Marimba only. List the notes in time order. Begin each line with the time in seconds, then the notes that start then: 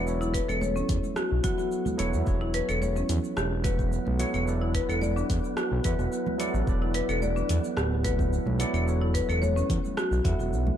0.21 E4
0.34 B4
0.49 A4
0.61 C#5
0.76 C#4
1.16 F#4
1.44 F#4
2.41 E4
2.54 B4
2.69 A4
2.82 C#5
2.96 C#4
3.37 G4
3.64 B4
4.62 E4
4.75 B4
4.89 A4
5.02 D5
5.16 D4
5.57 F#4
5.85 B4
6.82 E4
6.95 B4
7.09 A4
7.22 D5
7.36 D4
7.77 G4
8.04 B4
9.01 E4
9.14 B4
9.29 A4
9.42 C#5
9.56 C#4
9.97 F#4
10.25 E5